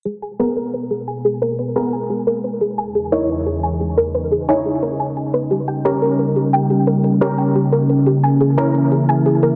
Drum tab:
HH |xxxxxxxx|xxxxxxxx|xxxxxxxx|xxxxxxxx|

HH |xxxxxxxx|xxxxxxxx|xxxxxxxx|